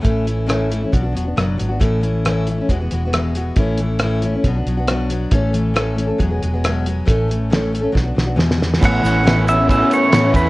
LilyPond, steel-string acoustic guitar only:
\new Staff \with { instrumentName = "Steel-string acoustic guitar" } { \time 4/4 \key a \major \tempo 4 = 137 <a, e a cis' e'>8 <e a cis' e'>8 <a, e a cis' e'>8 <e a cis' e'>16 <a cis' e'>16 <b, fis b d' fis'>16 <b d' fis'>16 <fis b d' fis'>16 <b d' fis'>16 <b, fis b d' fis'>8 <fis b d' fis'>16 <b d' fis'>16 | <a, e a cis' e'>8 <e a cis' e'>8 <a, e a cis' e'>8 <e a cis' e'>16 <a cis' e'>16 <e, b, e gis b fis'>16 <e gis b fis'>16 <e gis b fis'>16 <e gis b fis'>16 <e, b, e gis b fis'>8 <e gis b fis'>8 | <a, e a cis' e'>8 <e a cis' e'>8 <a, e a cis' e'>8 <e a cis' e'>16 <a cis' e'>16 <b, fis b d' fis'>16 <b d' fis'>16 <fis b d' fis'>16 <b d' fis'>16 <b, fis b d' fis'>8 <fis b d' fis'>8 | <a, e a cis' a'>8 <e a cis' a'>8 <a, e a cis' a'>8 <e a cis' a'>16 <a cis' a'>16 <e, b, fis gis b gis'>16 <fis gis b gis'>16 <fis gis b gis'>16 <fis gis b gis'>16 <e, b, fis gis b gis'>8 <fis gis b gis'>8 |
<a, e a cis' a'>8 <e a cis' a'>8 <a, e a cis' a'>8 <e a cis' a'>16 <a cis' a'>16 <b, fis b d' fis'>16 <b d' fis'>16 <fis b d' fis'>16 <b d' fis'>16 <e, b, e gis b gis'>8 <e gis b gis'>8 | <a, e b cis' e'>8 <e b cis' e'>8 <a, e b cis' e'>8 <e b cis' e'>16 <b cis' e'>8 <b cis' e'>8. <a, e b cis' e'>16 <b cis' e'>16 <e b cis' e'>16 <b cis' e'>16 | }